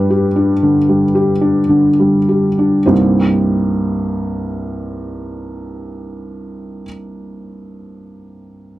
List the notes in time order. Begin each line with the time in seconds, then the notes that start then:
Already playing: G2 G3 B4
0.10 G4
0.36 D4
0.63 D3
0.89 G3
1.15 G4
1.41 D4
1.69 D3
2.00 G3
2.29 G4
2.59 D4
2.86 C2 G2 G3 A#3 C4 D#4 C5